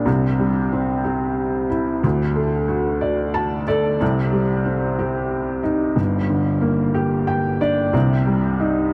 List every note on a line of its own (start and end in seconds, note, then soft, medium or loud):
0.06 1.99 C2 medium
0.06 1.99 C3 medium
0.39 1.67 G3 medium
0.72 2.00 C4 medium
1.04 2.01 G4 medium
1.70 2.02 E4 medium
2.03 3.97 D2 medium
2.03 3.97 D3 medium
2.35 3.63 A3 medium
2.68 3.96 F#4 soft
3.01 3.66 D5 medium
3.34 3.65 A5 medium
3.67 4.00 A4 medium
3.67 3.99 D5 medium
4.00 5.94 C2 medium
4.00 5.94 C3 medium
4.32 5.61 G3 medium
4.65 5.93 C4 medium
4.99 5.95 G4 medium
5.63 5.96 D#4 soft
5.96 7.90 G1 medium
5.96 7.90 G2 medium
6.29 7.57 D3 soft
6.61 7.90 A#3 medium
6.94 7.91 G4 medium
7.27 7.59 G5 medium
7.61 7.93 D4 medium
7.61 7.92 D5 medium
7.93 8.93 C2 medium
7.93 8.93 C3 medium
8.27 8.93 G3 medium
8.60 8.93 D#4 medium